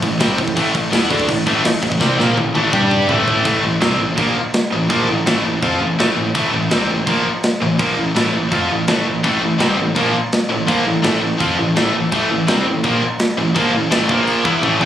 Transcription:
0.02 A1 A2 E3, kick, crash
0.20 C2 C3 G3 C4, snare, crash
0.38 A1 A2 E3, kick, crash
0.48 kick
0.57 A1 A2 E3 A3, kick, crash
0.75 A1 A2 E3, kick, crash
0.92 E2 E3 B3 E4, snare, crash
1.10 D2 D3 A3 D4, kick, crash
1.20 kick
1.28 A1 A2 E3, kick, crash
1.46 A1 A2 E3 A3, kick, crash
1.64 A1 A2 E3, snare, crash
1.82 A1 A2 E3, kick, crash
1.92 kick
2.01 C2 C3 G3 C4, kick, snare
2.18 A#1 A#2 F3 A#3, snare
2.37 A1 A2 E3, high tom
2.55 A1 A2 E3 A3, high tom
2.73 G2 G3 D4 G4, kick, mid tom
2.91 mid tom
3.08 A1 A2 E3 A3, floor tom
3.28 floor tom
3.44 A1 A2 E3 A3, kick, crash
3.64 A1 A2 E3
3.81 C2 C3 G3 C4, snare, crash
4.00 A1 A2 E3
4.17 A#1 A#2 F3 A#3, kick, crash
4.54 snare, crash
4.72 A1 A2 E3
4.90 A#1 A#2 F3 A#3, kick, crash
5.09 A1 A2 E3
5.26 A1 A2 E3 A3, snare, crash
5.44 A1 A2 E3
5.62 F2 F3 C4 F4, kick, crash
5.80 A1 A2 E3
5.99 A1 A2 E3 A3, snare, crash
6.16 A1 A2 E3
6.35 A1 A2 E3 A3, kick, crash
6.52 A1 A2 E3
6.71 C2 C3 G3 C4, snare, crash
6.89 A1 A2 E3
7.07 A#1 A#2 F3 A#3, kick, crash
7.43 snare, crash
7.62 A1 A2 E3
7.79 A#1 A#2 F3 A#3, kick, crash
7.96 A1 A2 E3
8.15 A1 A2 E3 A3, snare, crash
8.33 A1 A2 E3
8.52 F2 F3 C4 F4, kick, crash
8.70 A1 A2 E3
8.87 A1 A2 E3 A3, snare, crash
9.05 A1 A2 E3
9.23 A1 A2 E3 A3, kick, crash
9.41 A1 A2 E3
9.58 C2 C3 G3 C4, snare, crash
9.78 A1 A2 E3
9.95 A#1 A#2 F3 A#3, kick, crash
10.32 snare, crash
10.49 A1 A2 E3
10.67 A#1 A#2 F3 A#3, kick, crash
10.85 A1 A2 E3
11.03 A1 A2 E3 A3, snare, crash
11.20 A1 A2 E3
11.38 F2 F3 C4 F4, kick, crash
11.58 A1 A2 E3
11.76 A1 A2 E3 A3, snare, crash
11.94 A1 A2 E3
12.12 A1 A2 E3 A3, kick, crash
12.30 A1 A2 E3
12.47 C2 C3 G3 C4, snare, crash
12.66 A1 A2 E3
12.84 A#1 A#2 F3 A#3, kick, crash
13.19 snare, crash
13.37 A1 A2 E3
13.55 A#1 A#2 F3 A#3, kick, crash
13.73 A1 A2 E3
13.91 A1 A2 E3 A3, snare, crash
14.08 A#1 A#2 F3 A#3, kick
14.27 crash
14.44 E2 E3 B3 E4, kick
14.63 A1 A2 E3 A3, kick
14.80 E2 E3 B3 E4 G5, floor tom

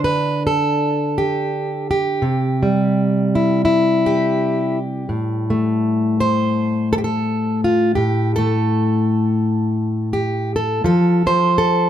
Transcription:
Already playing: D3 D4
0.04 B4
0.47 A4
1.18 G4
1.91 G4
2.22 C3
2.63 G3
3.35 E4
3.65 E4
4.06 G4
5.09 A2
5.50 A3
6.20 C5
6.93 A4
6.98 G4
7.04 A4
7.64 F4
7.95 A2 G4
8.36 A3 A4
10.13 G4
10.56 A4
10.84 F3 A4
11.26 F3 C5
11.58 A4

